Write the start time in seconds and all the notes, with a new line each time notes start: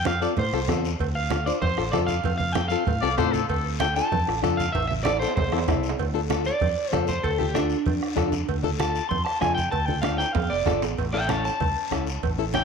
Already playing: F2
0.05 C4 F4 A4 F5, bombo rim, high conga, short guiro
0.21 C4 F4 A4 D5, short guiro
0.37 A2 C5, bombo low, cowbell, high conga, low conga, long guiro
0.53 C2 C4 F4 A4, bombo rim
0.68 E2 C4 F4 A4, bombo low, bombo rim, high conga, low conga, low timbale, short guiro
0.85 short guiro
0.99 D2, bombo low, cowbell, high conga, long guiro
1.15 F5
1.30 D4 F4 A4, bombo rim, high conga, short guiro
1.46 D4 F4 C5 D5, short guiro
1.62 F2 C5, bombo low, cowbell, high conga, low conga, long guiro
1.77 A1 D4 F4 A4, bombo rim
1.92 F2 D4 F4 A4 D5, bombo rim, high conga, low timbale, short guiro
2.07 F5, high conga, short guiro
2.23 F2, bombo low, cowbell, high conga, low conga, long guiro
2.38 F5, high conga
2.52 C4 F4 A4 G5, bombo rim, high conga, short guiro
2.68 C4 F4 A4 F5, short guiro
2.85 A2, bombo low, cowbell, high conga, low conga, long guiro
3.01 C2 C4 F4 A4 D5, bombo rim
3.18 A2 C4 F4 A4 C5, bombo low, bombo rim, high conga, low timbale, short guiro
3.33 A4, high conga, short guiro
3.49 D2 A4, bombo low, cowbell, high conga, long guiro
3.80 D4 F4 A4 G5, bombo rim, high conga, short guiro
3.96 D4 F4 A4 A5, short guiro
4.12 F2, bombo low, cowbell, high conga, low conga, long guiro
4.28 A1 D4 F4 A4, bombo rim
4.42 F2 D4 F4 A4, bombo rim, high conga, short guiro
4.57 F5, high conga, short guiro
4.72 A1 E5, bombo low, cowbell, high timbale, long guiro
4.87 E5, high conga
5.04 C4 E4 A4 D5, bombo rim, high conga, high timbale, short guiro
5.17 C5, high timbale
5.21 C4 E4 A4, short guiro
5.28 low timbale
5.36 C2 C5, bombo low, cowbell, high conga, low conga, low timbale, long guiro
5.48 low timbale
5.52 E2 C4 E4 A4, bombo rim
5.58 low timbale
5.68 C2 C4 E4 A4, bombo low, bombo rim, high conga, low conga, low timbale, short guiro
5.83 short guiro
5.89 low timbale
5.98 D2, bombo low, cowbell, high conga, long guiro
6.14 D4 F4 A4
6.29 D4 F4 A4, bombo rim, high conga, short guiro
6.44 D5, short guiro
6.60 F2, bombo low, cowbell, high conga, low conga, long guiro
6.91 F2 D4 F4 A4 C5, bombo rim, high conga, low timbale, short guiro
7.07 C5, high conga, short guiro
7.23 D2 A4, bombo low, cowbell, high conga, long guiro
7.38 D4 F4 G4 A4, high conga
7.54 D4 F4 A4, bombo rim, high conga, short guiro
7.70 short guiro
7.86 F2, bombo low, cowbell, high conga, low conga, long guiro
8.03 bombo rim
8.16 F2 D4 F4 A4, bombo rim, high conga, low conga, low timbale, short guiro
8.32 high conga, short guiro
8.48 D2, bombo low, cowbell, high conga, long guiro
8.63 D4 F4 A4, high conga
8.79 D4 F4 A4 A5, bombo rim, high conga, short guiro
8.95 short guiro
9.09 F2 C6, bombo low, cowbell, high conga, low conga, long guiro
9.25 A5, bombo rim
9.41 F2 D4 F4 A4 G#5, bombo rim, high conga, low timbale, short guiro
9.55 G5, high conga, short guiro
9.71 D2 A5, bombo low, cowbell, high conga, long guiro
9.86 D4 F4 A4 G5, high conga
10.02 D4 F4 A4 F5, bombo rim, high conga, short guiro
10.18 G5, high timbale, short guiro
10.33 F2 F5, bombo low, cowbell, high conga, low conga, low timbale, long guiro
10.50 F1 D5, low timbale
10.66 G1 D4 F4 A4, bombo low, bombo rim, high conga, low conga, low timbale, short guiro
10.82 A1, low timbale, short guiro
10.97 A1, bombo low, cowbell, high conga, long guiro
11.13 C#4 E4 A4 E5 G5
11.28 C#4 E4 A4 C#5 A5, bombo rim, high conga, short guiro
11.44 A5, short guiro
11.60 C#2, bombo low, cowbell, high conga, low conga, long guiro
11.91 C#2 C#4 E4 A4, bombo rim, high conga, short guiro
12.07 short guiro
12.23 A1, bombo low, cowbell, high conga, low conga, long guiro
12.38 C#4 E4 A4
12.54 C#4 E4 A4 G5, bombo rim, high conga, short guiro